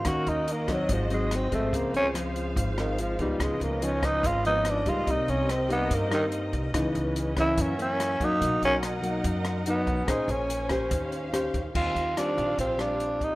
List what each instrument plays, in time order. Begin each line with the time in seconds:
Already playing: tenor saxophone F4
0.05 upright bass D#2, nylon-string guitar D#3 A#3 C#4 F#4, string section C#4 F#4 A#4 D#5, tenor saxophone F#4, kick, cross-stick, closed hi-hat
0.27 upright bass D#2, tenor saxophone D#4, closed hi-hat
0.48 closed hi-hat
0.52 tenor saxophone A#3
0.68 nylon-string guitar F#3 C4 D#4, kick, cross-stick, closed hi-hat
0.72 tenor saxophone F#3
0.88 upright bass G#1, nylon-string guitar G#2, string section G#4 C5, kick, closed hi-hat
0.93 tenor saxophone F3
1.10 nylon-string guitar F#3 C4 D#4, closed hi-hat
1.14 tenor saxophone G#3
1.31 cross-stick, closed hi-hat
1.36 tenor saxophone C4
1.52 upright bass G#1, nylon-string guitar F3 G#3 C4, tenor saxophone A3, kick, closed hi-hat
1.72 upright bass C#2, nylon-string guitar C#3, tenor saxophone A#3, string section F4 F5, kick, closed hi-hat
1.94 upright bass C#2, tenor saxophone C#4, closed hi-hat
2.14 nylon-string guitar F3 G#3 C4, cross-stick, closed hi-hat
2.36 closed hi-hat
2.55 upright bass G#1, nylon-string guitar G#2, kick, closed hi-hat
2.77 tenor saxophone D#3, nylon-string guitar F3 G#3 C4, cross-stick, closed hi-hat
2.98 tenor saxophone F3, closed hi-hat
3.19 upright bass C#2, nylon-string guitar F3 B3 D#4, tenor saxophone G3, kick, closed hi-hat
3.38 upright bass C#2, nylon-string guitar C#3, string section C#4 B4 D#5, kick, cross-stick, closed hi-hat
3.43 tenor saxophone G#3
3.60 upright bass C#2, tenor saxophone A#3, closed hi-hat
3.82 nylon-string guitar F3 B3 D#4, tenor saxophone C#4, closed hi-hat
4.03 tenor saxophone D#4, kick, cross-stick, closed hi-hat
4.23 upright bass G#1, nylon-string guitar G#2, tenor saxophone F4, kick, closed hi-hat
4.45 nylon-string guitar F3 B3 D#4, tenor saxophone D#4, closed hi-hat
4.65 cross-stick, closed hi-hat
4.70 tenor saxophone D4
4.86 upright bass C#2, nylon-string guitar G3 A#3 D#4, tenor saxophone F4, kick, closed hi-hat
5.06 upright bass C2, nylon-string guitar C3, string section C4 G4 A#4, kick, closed hi-hat
5.11 tenor saxophone D#4
5.28 upright bass C2, tenor saxophone C#4, closed hi-hat
5.49 tenor saxophone C4, cross-stick, closed hi-hat
5.69 nylon-string guitar G3 A#3 D#4, tenor saxophone B3, closed hi-hat
5.90 nylon-string guitar G2, upright bass G2, kick, closed hi-hat
5.95 tenor saxophone A#3
6.11 tenor saxophone D#3, nylon-string guitar G3 A#3 D#4, cross-stick, closed hi-hat
6.32 closed hi-hat
6.53 upright bass C2, kick, closed hi-hat
6.71 upright bass C#2, nylon-string guitar C#3 E3 B3, string section C#4 B4, kick, cross-stick, closed hi-hat
6.75 nylon-string guitar D#4
6.95 upright bass C#2, closed hi-hat
7.16 closed hi-hat
7.37 nylon-string guitar E3 A#3 C#4, tenor saxophone E4, kick, cross-stick, closed hi-hat
7.57 nylon-string guitar F#2, upright bass F#2, string section F#4 A#4 E5, kick, closed hi-hat
7.61 tenor saxophone C#4
7.78 nylon-string guitar E3 A#3 C#4, tenor saxophone C#4, closed hi-hat
8.00 cross-stick, closed hi-hat
8.20 upright bass F#2, nylon-string guitar F#3 A#3 D#4, tenor saxophone D#4, kick, closed hi-hat
8.41 upright bass B1, nylon-string guitar B2, string section D#4 D#5 F#5, kick, closed hi-hat
8.62 upright bass B1, tenor saxophone C#4, closed hi-hat
8.83 cross-stick, closed hi-hat
9.02 nylon-string guitar F#3 A#3 D#4, closed hi-hat
9.23 nylon-string guitar F#2, upright bass F#2, kick, closed hi-hat
9.45 cross-stick, closed hi-hat
9.66 nylon-string guitar F#3 D#4, tenor saxophone B3, closed hi-hat
9.87 upright bass B1, kick, closed hi-hat
10.07 upright bass A#1, nylon-string guitar A#3 C#4 G#4 C5, string section C#4 C5 G#5, tenor saxophone D#4, kick, cross-stick, closed hi-hat
10.28 upright bass A#1, tenor saxophone C#4, closed hi-hat
10.50 closed hi-hat
10.69 nylon-string guitar C#4 G4 C5, kick, cross-stick, closed hi-hat
10.89 upright bass D#2, nylon-string guitar D#3, string section G4 F5, kick, closed hi-hat
11.12 closed hi-hat
11.32 nylon-string guitar C#4 G4 C5, cross-stick, closed hi-hat
11.54 upright bass D#2, kick, closed hi-hat
11.73 upright bass D#2, nylon-string guitar D#3 G3 C4 F4, string section F4 G4 C5 F5, tenor saxophone F4, kick, crash
11.95 upright bass D#2, closed hi-hat
12.17 nylon-string guitar G3 C4 F4, tenor saxophone D4, cross-stick, closed hi-hat
12.38 upright bass A#1, closed hi-hat
12.57 upright bass A#1, nylon-string guitar A#2, tenor saxophone C4, kick, closed hi-hat
12.78 nylon-string guitar G3 C4 F4, tenor saxophone D4, cross-stick, closed hi-hat
13.00 closed hi-hat
13.21 tenor saxophone D#4, kick, closed hi-hat